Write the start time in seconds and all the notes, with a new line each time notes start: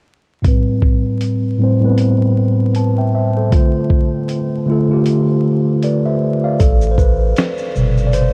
0.42 A2 G3 C4, kick, closed hi-hat
0.48 B4
0.82 kick
1.21 closed hi-hat
1.58 A2 G3 C4
1.63 C5
1.80 A2 G3 B3
1.85 B4
1.90 C4
1.98 closed hi-hat
2.75 A5, closed hi-hat
2.98 E5 G5
3.15 C5 E5
3.36 A4 C5
3.50 D3 A3 F4, kick, closed hi-hat
3.56 C5
3.90 kick
4.29 closed hi-hat
4.66 D3 A3
4.70 F4 A4
4.87 D3 A3 F4
4.93 G4
5.06 closed hi-hat
5.83 B4 D5, closed hi-hat
6.06 C5 E5
6.44 D5 F5
6.59 A1 A4, kick, closed hi-hat, shaker
6.81 shaker
6.91 C5
6.98 B4, kick, shaker
7.37 snare, closed hi-hat, shaker
7.58 shaker
7.75 G1 B2 C3 G3, shaker
7.97 shaker
8.07 D5
8.13 C5, closed hi-hat, shaker